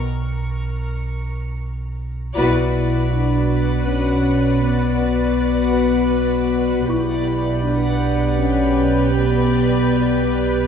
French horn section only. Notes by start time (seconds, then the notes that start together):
2.35 E4
3.13 D4
3.87 C#4
4.63 B3
6.89 E4
7.63 D4
8.38 C#4
9.12 B3